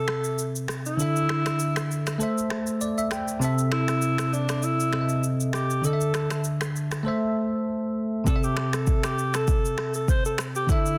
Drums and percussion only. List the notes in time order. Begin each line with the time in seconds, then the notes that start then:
0.08 finger snap, cross-stick
0.24 shaker
0.39 shaker
0.56 shaker
0.68 finger snap, cross-stick, shaker
0.86 shaker
0.99 shaker
1.16 shaker
1.29 finger snap, cross-stick
1.46 finger snap, cross-stick, shaker
1.59 shaker
1.76 finger snap, cross-stick, shaker
1.91 shaker
2.07 finger snap, cross-stick, shaker
2.20 shaker
2.38 shaker
2.50 finger snap, cross-stick
2.67 shaker
2.81 shaker
2.98 shaker
3.11 finger snap, cross-stick, shaker
3.28 shaker
3.42 shaker
3.58 shaker
3.72 finger snap, cross-stick
3.88 finger snap, cross-stick, shaker
4.02 shaker
4.18 finger snap, cross-stick, shaker
4.33 shaker
4.49 finger snap, cross-stick, shaker
4.63 shaker
4.80 shaker
4.93 finger snap, cross-stick
5.09 shaker
5.23 shaker
5.40 shaker
5.53 finger snap, cross-stick, shaker
5.70 shaker
5.84 shaker
6.01 shaker
6.14 finger snap, cross-stick, shaker
6.30 finger snap, cross-stick, shaker
6.44 shaker
6.61 finger snap, cross-stick, shaker
6.76 shaker
6.91 finger snap, cross-stick, shaker
8.27 kick, shaker
8.43 shaker
8.57 finger snap, cross-stick
8.73 finger snap, cross-stick, shaker
8.87 kick, shaker
9.03 finger snap, cross-stick, shaker
9.18 shaker
9.34 finger snap, cross-stick, shaker
9.48 kick, shaker
9.65 shaker
9.78 finger snap, cross-stick
9.94 shaker
10.08 kick, shaker
10.25 shaker
10.38 finger snap, cross-stick, shaker
10.55 shaker
10.69 kick, shaker
10.86 shaker